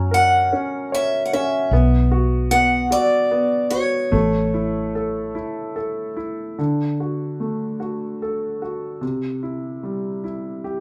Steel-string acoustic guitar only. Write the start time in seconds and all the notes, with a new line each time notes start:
Already playing: A#5
0.14 F#5
0.94 E5
1.26 F#5
1.33 E5
2.51 F#5
2.92 D5
3.70 C#5